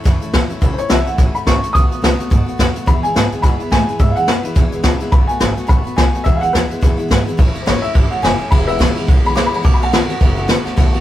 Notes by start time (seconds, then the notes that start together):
Already playing: A5 C#6
0.04 F#2 A2 E3 A3 C#4 E4, kick, snare, closed hi-hat
0.20 A3 C#4 E4, muted upright bass stroke, closed hi-hat
0.33 E2 E3 A3 C#4 E4, kick, snare, closed hi-hat
0.49 A3 C#4 E4, muted upright bass stroke, closed hi-hat
0.61 C#2 A2 E3 A3 C#4 E4, kick, closed hi-hat
0.73 C5
0.78 A3 C#4 E4 C#5, muted upright bass stroke, closed hi-hat
0.89 B1 E3 A3 C#4 E4 E5, snare, closed hi-hat
1.06 A3 C#4 E4 F#5, muted upright bass stroke, closed hi-hat
1.18 A1 A2 E3 A3 C#4 E4, kick, snare, closed hi-hat
1.34 A3 C#4 E4 B5, muted upright bass stroke, closed hi-hat
1.46 G#1 E3 A3 C#4 E4 C#6, kick, snare, closed hi-hat
1.63 A3 C#4 E4, muted upright bass stroke, closed hi-hat
1.73 B1 B2 D#3 A3 B3 D#6, kick, closed hi-hat
1.77 F#4
1.91 A3 B3 F#4, muted upright bass stroke, closed hi-hat
2.02 C#2 D#3 A3 B3 F#4, snare, closed hi-hat
2.18 A3 B3 F#4, muted upright bass stroke, closed hi-hat
2.30 G#2 B2 D#3 A3 B3 F#4, kick, closed hi-hat
2.46 A3 B3 F#4, muted upright bass stroke, closed hi-hat
2.58 F#2 D#3 A3 B3 F#4, kick, snare, closed hi-hat
2.74 A3 B3 F#4, muted upright bass stroke, closed hi-hat
2.86 E2 B2 E3 G#3 B3 E4 B5, kick, closed hi-hat
3.03 E3 G#3 B3 E4 G#5, muted upright bass stroke, closed hi-hat
3.14 G#2 E3 G#3 B3 E4, snare, closed hi-hat
3.30 E3 G#3 B3 E4, muted upright bass stroke, closed hi-hat
3.42 E2 B2 E3 G#3 B3 E4 B5, kick, snare, closed hi-hat
3.59 E3 G#3 B3 E4, muted upright bass stroke, closed hi-hat
3.70 A2 E3 G#3 G#5, kick, snare, closed hi-hat
3.87 E3 G#3 B3 E4, muted upright bass stroke, closed hi-hat
3.99 E2 G#2 B2 E3 G#3 B3 E4 E5, kick, closed hi-hat
4.11 F5
4.16 E3 G#3 B3 E4 F#5, muted upright bass stroke, closed hi-hat
4.26 F#2 E3 G#3 B3 E4 B4, snare, closed hi-hat
4.43 E3 G#3 B3 E4, muted upright bass stroke, closed hi-hat
4.55 E2 B2 E3 G#3 B3 E4, kick, snare, closed hi-hat
4.71 E3 G#3 B3 E4, muted upright bass stroke, closed hi-hat
4.83 C#2 E3 G#3 B3 E4, kick, snare, closed hi-hat
4.99 E3 G#3 B3 E4, muted upright bass stroke, closed hi-hat
5.12 B1 B2 D#3 A3 B3 F#4 B5, kick, closed hi-hat
5.27 A3 B3 F#4 G#5, muted upright bass stroke, closed hi-hat
5.39 G#1 D#3 A3 F#4, snare, closed hi-hat
5.56 A3 B3 F#4, muted upright bass stroke, closed hi-hat
5.67 A1 B2 D#3 A3 B3 F#4 B5, kick, closed hi-hat
5.84 A3 B3 F#4, muted upright bass stroke, closed hi-hat
5.96 B1 D#3 A3 B3 F#4 G#5, kick, snare, closed hi-hat
6.12 A3 B3 F#4, muted upright bass stroke, closed hi-hat
6.24 E2 B2 E3 G#3 B3 E4 E5, kick, closed hi-hat
6.36 E4 F5
6.41 E3 G#3 B3 F#5, muted upright bass stroke, closed hi-hat
6.53 D#2 E3 G#3 B3 E4 B4, snare, closed hi-hat
6.69 E3 G#3 B3 E4, muted upright bass stroke, closed hi-hat
6.81 E2 B2 E3 G#3 B3 E4, kick, snare, closed hi-hat
6.97 E3 G#3 B3 E4, muted upright bass stroke, closed hi-hat
7.09 G#2 E3 G#3 B3 E4, kick, snare, closed hi-hat
7.25 E3 G#3 B3 E4, muted upright bass stroke, closed hi-hat
7.37 A1 A2 E3 A3 C#4 E4, kick, ride
7.54 A3 C#4 E4, muted upright bass stroke, ride
7.62 A2 C5
7.66 A1 E3 A3 C#4 E4 C#5, snare, ride
7.82 A3 C#4 E4 E5, muted upright bass stroke, ride
7.94 G#1 E3 A3 C#4 E4, kick, ride
8.10 A3 C#4 E4 F#5, muted upright bass stroke, ride
8.22 F#1 A2 E3 A3 C#4 E4 G#5, snare, ride
8.38 A3 C#4 E4, muted upright bass stroke, ride
8.51 E1 E2 B2 E3 G#3 B3 E4 B5, kick, ride
8.67 E3 G#3 B3 E4 B4 E5, ride
8.79 E2 B2 E3 G#3 B3 E4, kick, snare, ride
8.95 E3 G#3 B3 E4, muted upright bass stroke, ride
9.07 B1 E3 G#3 B3 E4, kick, ride
9.22 E3 G#3 B3 E4 B5, ride
9.35 E2 B2 E3 G#3 B3 E4 D6, snare, ride
9.46 B5
9.51 E3 G#3 B3 E4, muted upright bass stroke, ride
9.56 B5
9.63 B1 B2 D#3 A3 B3 F#4 D6, kick, ride
9.74 B5
9.80 A3 B3 F#4 F#5 A5, ride
9.91 B2 D#3 A3 B3 F#4, snare, ride
10.08 A3 B3 F#4, muted upright bass stroke, ride
10.20 F#1 D#3 A3 B3 F#4, kick, ride
10.36 A3 B3 F#4, ride
10.48 B2 D#3 A3 B3 F#4, snare, ride
10.64 A3 B3 F#4, muted upright bass stroke, snare, ride
10.76 B1 B2 D#3 A3 B3 F#4, kick, ride
10.92 A3 B3 F#4, ride